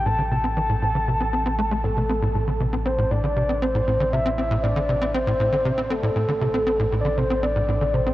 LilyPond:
<<
  \new Staff \with { instrumentName = "Soft synth lead" } { \time 4/4 \key a \phrygian \tempo 4 = 118 a''8 a''2. a'8~ | a'4 r8 c''8 d''4 c''4 | e''4 d''4 c''4. a'8~ | a'4~ \tuplet 3/2 { a'8. r16 d''8 } c''8 d''4 c''8 | }
  \new Staff \with { instrumentName = "Analog synth bass" } { \clef bass \time 4/4 \key a \phrygian a,16 d16 c16 c'16 e16 a,16 a,16 d16 c16 c'16 c'16 c'16 a16 a16 a,16 c16 | c'16 a,16 a,16 d16 c16 c'16 c'16 a,16 a,16 d16 c16 c'16 c'16 a,16 a,16 d16 | c16 c'16 c'16 a,16 a,16 d16 c16 c'16 c'16 a,16 a,16 d16 c16 c'16 c'16 a,16 | a,16 d16 c16 c'16 c'16 a,16 a,16 d16 c16 c'16 c'16 a,16 a,16 d16 c16 c'16 | }
  \new Staff \with { instrumentName = "Sub bass" } { \clef bass \time 4/4 \key a \phrygian a,,1~ | a,,1~ | a,,1 | a,,1 | }
>>